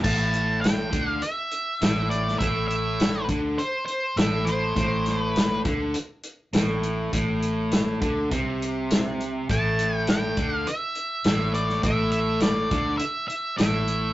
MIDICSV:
0, 0, Header, 1, 5, 480
1, 0, Start_track
1, 0, Key_signature, 0, "minor"
1, 0, Tempo, 589971
1, 29, Time_signature, 4, 2, 24, 8
1, 11498, End_track
2, 0, Start_track
2, 0, Title_t, "Lead electric guitar"
2, 0, Program_c, 0, 29
2, 31, Note_on_c, 0, 81, 92
2, 495, Note_off_c, 0, 81, 0
2, 499, Note_on_c, 0, 79, 85
2, 889, Note_off_c, 0, 79, 0
2, 889, Note_on_c, 0, 77, 85
2, 995, Note_on_c, 0, 76, 83
2, 1003, Note_off_c, 0, 77, 0
2, 1707, Note_off_c, 0, 76, 0
2, 1710, Note_on_c, 0, 74, 68
2, 1940, Note_off_c, 0, 74, 0
2, 1943, Note_on_c, 0, 76, 93
2, 2170, Note_off_c, 0, 76, 0
2, 2179, Note_on_c, 0, 76, 82
2, 2639, Note_off_c, 0, 76, 0
2, 2916, Note_on_c, 0, 72, 84
2, 3129, Note_off_c, 0, 72, 0
2, 3138, Note_on_c, 0, 72, 94
2, 3392, Note_on_c, 0, 76, 91
2, 3399, Note_off_c, 0, 72, 0
2, 3620, Note_on_c, 0, 72, 76
2, 3646, Note_off_c, 0, 76, 0
2, 4238, Note_off_c, 0, 72, 0
2, 4238, Note_on_c, 0, 71, 76
2, 4561, Note_off_c, 0, 71, 0
2, 7736, Note_on_c, 0, 81, 102
2, 8111, Note_off_c, 0, 81, 0
2, 8111, Note_on_c, 0, 79, 102
2, 8213, Note_off_c, 0, 79, 0
2, 8216, Note_on_c, 0, 79, 98
2, 8591, Note_off_c, 0, 79, 0
2, 8591, Note_on_c, 0, 77, 98
2, 8685, Note_on_c, 0, 76, 89
2, 8700, Note_off_c, 0, 77, 0
2, 9385, Note_off_c, 0, 76, 0
2, 9388, Note_on_c, 0, 74, 80
2, 9627, Note_off_c, 0, 74, 0
2, 9630, Note_on_c, 0, 76, 81
2, 9851, Note_off_c, 0, 76, 0
2, 9861, Note_on_c, 0, 76, 84
2, 10102, Note_off_c, 0, 76, 0
2, 10105, Note_on_c, 0, 74, 84
2, 10554, Note_off_c, 0, 74, 0
2, 10557, Note_on_c, 0, 76, 89
2, 10795, Note_off_c, 0, 76, 0
2, 10805, Note_on_c, 0, 76, 81
2, 11036, Note_off_c, 0, 76, 0
2, 11045, Note_on_c, 0, 76, 84
2, 11498, Note_off_c, 0, 76, 0
2, 11498, End_track
3, 0, Start_track
3, 0, Title_t, "Distorted electric guitar"
3, 0, Program_c, 1, 30
3, 31, Note_on_c, 1, 45, 96
3, 739, Note_off_c, 1, 45, 0
3, 743, Note_on_c, 1, 50, 86
3, 982, Note_off_c, 1, 50, 0
3, 1479, Note_on_c, 1, 45, 100
3, 1951, Note_off_c, 1, 45, 0
3, 1960, Note_on_c, 1, 45, 107
3, 2675, Note_off_c, 1, 45, 0
3, 2682, Note_on_c, 1, 50, 98
3, 2916, Note_off_c, 1, 50, 0
3, 3402, Note_on_c, 1, 45, 101
3, 3861, Note_off_c, 1, 45, 0
3, 3870, Note_on_c, 1, 45, 92
3, 4591, Note_off_c, 1, 45, 0
3, 4597, Note_on_c, 1, 50, 89
3, 4834, Note_off_c, 1, 50, 0
3, 5318, Note_on_c, 1, 45, 87
3, 5788, Note_off_c, 1, 45, 0
3, 5798, Note_on_c, 1, 45, 102
3, 6513, Note_off_c, 1, 45, 0
3, 6517, Note_on_c, 1, 50, 81
3, 6753, Note_off_c, 1, 50, 0
3, 6758, Note_on_c, 1, 48, 96
3, 7711, Note_off_c, 1, 48, 0
3, 7728, Note_on_c, 1, 45, 97
3, 8435, Note_off_c, 1, 45, 0
3, 8443, Note_on_c, 1, 50, 95
3, 8672, Note_off_c, 1, 50, 0
3, 9166, Note_on_c, 1, 45, 98
3, 9619, Note_off_c, 1, 45, 0
3, 9629, Note_on_c, 1, 45, 99
3, 10340, Note_off_c, 1, 45, 0
3, 10344, Note_on_c, 1, 50, 97
3, 10579, Note_off_c, 1, 50, 0
3, 11052, Note_on_c, 1, 45, 88
3, 11498, Note_off_c, 1, 45, 0
3, 11498, End_track
4, 0, Start_track
4, 0, Title_t, "Fingered electric bass"
4, 0, Program_c, 2, 33
4, 35, Note_on_c, 2, 33, 80
4, 724, Note_off_c, 2, 33, 0
4, 758, Note_on_c, 2, 38, 96
4, 980, Note_off_c, 2, 38, 0
4, 1479, Note_on_c, 2, 33, 85
4, 1928, Note_off_c, 2, 33, 0
4, 1955, Note_on_c, 2, 33, 87
4, 2647, Note_off_c, 2, 33, 0
4, 2671, Note_on_c, 2, 38, 89
4, 2900, Note_off_c, 2, 38, 0
4, 3387, Note_on_c, 2, 33, 83
4, 3844, Note_off_c, 2, 33, 0
4, 3872, Note_on_c, 2, 33, 86
4, 4567, Note_off_c, 2, 33, 0
4, 4601, Note_on_c, 2, 38, 90
4, 4827, Note_off_c, 2, 38, 0
4, 5313, Note_on_c, 2, 33, 88
4, 5766, Note_off_c, 2, 33, 0
4, 5801, Note_on_c, 2, 33, 74
4, 6489, Note_off_c, 2, 33, 0
4, 6528, Note_on_c, 2, 38, 93
4, 6749, Note_off_c, 2, 38, 0
4, 6763, Note_on_c, 2, 36, 85
4, 7688, Note_off_c, 2, 36, 0
4, 7726, Note_on_c, 2, 33, 84
4, 8408, Note_off_c, 2, 33, 0
4, 8437, Note_on_c, 2, 38, 89
4, 8660, Note_off_c, 2, 38, 0
4, 9153, Note_on_c, 2, 33, 85
4, 9599, Note_off_c, 2, 33, 0
4, 9628, Note_on_c, 2, 33, 85
4, 10315, Note_off_c, 2, 33, 0
4, 10344, Note_on_c, 2, 38, 92
4, 10569, Note_off_c, 2, 38, 0
4, 11065, Note_on_c, 2, 33, 81
4, 11498, Note_off_c, 2, 33, 0
4, 11498, End_track
5, 0, Start_track
5, 0, Title_t, "Drums"
5, 34, Note_on_c, 9, 49, 98
5, 35, Note_on_c, 9, 36, 98
5, 116, Note_off_c, 9, 36, 0
5, 116, Note_off_c, 9, 49, 0
5, 273, Note_on_c, 9, 42, 61
5, 354, Note_off_c, 9, 42, 0
5, 520, Note_on_c, 9, 42, 78
5, 532, Note_on_c, 9, 38, 94
5, 601, Note_off_c, 9, 42, 0
5, 613, Note_off_c, 9, 38, 0
5, 752, Note_on_c, 9, 42, 63
5, 755, Note_on_c, 9, 36, 96
5, 833, Note_off_c, 9, 42, 0
5, 837, Note_off_c, 9, 36, 0
5, 990, Note_on_c, 9, 42, 81
5, 1071, Note_off_c, 9, 42, 0
5, 1231, Note_on_c, 9, 42, 67
5, 1312, Note_off_c, 9, 42, 0
5, 1476, Note_on_c, 9, 42, 89
5, 1488, Note_on_c, 9, 38, 109
5, 1558, Note_off_c, 9, 42, 0
5, 1569, Note_off_c, 9, 38, 0
5, 1718, Note_on_c, 9, 42, 66
5, 1799, Note_off_c, 9, 42, 0
5, 1857, Note_on_c, 9, 38, 30
5, 1938, Note_off_c, 9, 38, 0
5, 1957, Note_on_c, 9, 36, 100
5, 1957, Note_on_c, 9, 42, 78
5, 2038, Note_off_c, 9, 36, 0
5, 2038, Note_off_c, 9, 42, 0
5, 2200, Note_on_c, 9, 42, 62
5, 2282, Note_off_c, 9, 42, 0
5, 2438, Note_on_c, 9, 42, 79
5, 2450, Note_on_c, 9, 38, 108
5, 2520, Note_off_c, 9, 42, 0
5, 2531, Note_off_c, 9, 38, 0
5, 2675, Note_on_c, 9, 36, 88
5, 2675, Note_on_c, 9, 42, 60
5, 2756, Note_off_c, 9, 36, 0
5, 2756, Note_off_c, 9, 42, 0
5, 2919, Note_on_c, 9, 42, 71
5, 3000, Note_off_c, 9, 42, 0
5, 3154, Note_on_c, 9, 42, 59
5, 3236, Note_off_c, 9, 42, 0
5, 3393, Note_on_c, 9, 42, 80
5, 3404, Note_on_c, 9, 38, 117
5, 3474, Note_off_c, 9, 42, 0
5, 3485, Note_off_c, 9, 38, 0
5, 3634, Note_on_c, 9, 42, 63
5, 3715, Note_off_c, 9, 42, 0
5, 3876, Note_on_c, 9, 36, 96
5, 3879, Note_on_c, 9, 42, 88
5, 3957, Note_off_c, 9, 36, 0
5, 3960, Note_off_c, 9, 42, 0
5, 4114, Note_on_c, 9, 42, 60
5, 4126, Note_on_c, 9, 38, 31
5, 4195, Note_off_c, 9, 42, 0
5, 4207, Note_off_c, 9, 38, 0
5, 4360, Note_on_c, 9, 42, 80
5, 4371, Note_on_c, 9, 38, 105
5, 4441, Note_off_c, 9, 42, 0
5, 4452, Note_off_c, 9, 38, 0
5, 4595, Note_on_c, 9, 42, 61
5, 4599, Note_on_c, 9, 36, 99
5, 4676, Note_off_c, 9, 42, 0
5, 4680, Note_off_c, 9, 36, 0
5, 4833, Note_on_c, 9, 42, 82
5, 4914, Note_off_c, 9, 42, 0
5, 5071, Note_on_c, 9, 42, 65
5, 5153, Note_off_c, 9, 42, 0
5, 5315, Note_on_c, 9, 42, 87
5, 5326, Note_on_c, 9, 38, 112
5, 5396, Note_off_c, 9, 42, 0
5, 5407, Note_off_c, 9, 38, 0
5, 5559, Note_on_c, 9, 42, 68
5, 5640, Note_off_c, 9, 42, 0
5, 5801, Note_on_c, 9, 36, 95
5, 5802, Note_on_c, 9, 42, 96
5, 5883, Note_off_c, 9, 36, 0
5, 5883, Note_off_c, 9, 42, 0
5, 6040, Note_on_c, 9, 42, 63
5, 6121, Note_off_c, 9, 42, 0
5, 6276, Note_on_c, 9, 42, 83
5, 6288, Note_on_c, 9, 38, 92
5, 6358, Note_off_c, 9, 42, 0
5, 6369, Note_off_c, 9, 38, 0
5, 6520, Note_on_c, 9, 42, 60
5, 6524, Note_on_c, 9, 36, 98
5, 6601, Note_off_c, 9, 42, 0
5, 6605, Note_off_c, 9, 36, 0
5, 6764, Note_on_c, 9, 42, 79
5, 6765, Note_on_c, 9, 36, 88
5, 6846, Note_off_c, 9, 36, 0
5, 6846, Note_off_c, 9, 42, 0
5, 7014, Note_on_c, 9, 42, 61
5, 7095, Note_off_c, 9, 42, 0
5, 7245, Note_on_c, 9, 42, 91
5, 7256, Note_on_c, 9, 38, 106
5, 7326, Note_off_c, 9, 42, 0
5, 7337, Note_off_c, 9, 38, 0
5, 7488, Note_on_c, 9, 42, 59
5, 7570, Note_off_c, 9, 42, 0
5, 7725, Note_on_c, 9, 36, 111
5, 7730, Note_on_c, 9, 42, 89
5, 7807, Note_off_c, 9, 36, 0
5, 7811, Note_off_c, 9, 42, 0
5, 7963, Note_on_c, 9, 42, 63
5, 8044, Note_off_c, 9, 42, 0
5, 8193, Note_on_c, 9, 42, 80
5, 8205, Note_on_c, 9, 38, 94
5, 8275, Note_off_c, 9, 42, 0
5, 8286, Note_off_c, 9, 38, 0
5, 8435, Note_on_c, 9, 42, 62
5, 8439, Note_on_c, 9, 36, 105
5, 8516, Note_off_c, 9, 42, 0
5, 8520, Note_off_c, 9, 36, 0
5, 8679, Note_on_c, 9, 42, 79
5, 8761, Note_off_c, 9, 42, 0
5, 8910, Note_on_c, 9, 42, 61
5, 8992, Note_off_c, 9, 42, 0
5, 9146, Note_on_c, 9, 42, 88
5, 9158, Note_on_c, 9, 38, 109
5, 9228, Note_off_c, 9, 42, 0
5, 9239, Note_off_c, 9, 38, 0
5, 9392, Note_on_c, 9, 42, 72
5, 9473, Note_off_c, 9, 42, 0
5, 9512, Note_on_c, 9, 38, 30
5, 9593, Note_off_c, 9, 38, 0
5, 9626, Note_on_c, 9, 42, 89
5, 9628, Note_on_c, 9, 36, 108
5, 9707, Note_off_c, 9, 42, 0
5, 9710, Note_off_c, 9, 36, 0
5, 9856, Note_on_c, 9, 42, 65
5, 9937, Note_off_c, 9, 42, 0
5, 10092, Note_on_c, 9, 42, 88
5, 10103, Note_on_c, 9, 38, 92
5, 10173, Note_off_c, 9, 42, 0
5, 10184, Note_off_c, 9, 38, 0
5, 10341, Note_on_c, 9, 42, 64
5, 10343, Note_on_c, 9, 36, 102
5, 10422, Note_off_c, 9, 42, 0
5, 10424, Note_off_c, 9, 36, 0
5, 10572, Note_on_c, 9, 42, 85
5, 10653, Note_off_c, 9, 42, 0
5, 10817, Note_on_c, 9, 42, 64
5, 10898, Note_off_c, 9, 42, 0
5, 11051, Note_on_c, 9, 42, 78
5, 11062, Note_on_c, 9, 38, 105
5, 11132, Note_off_c, 9, 42, 0
5, 11143, Note_off_c, 9, 38, 0
5, 11289, Note_on_c, 9, 42, 65
5, 11370, Note_off_c, 9, 42, 0
5, 11498, End_track
0, 0, End_of_file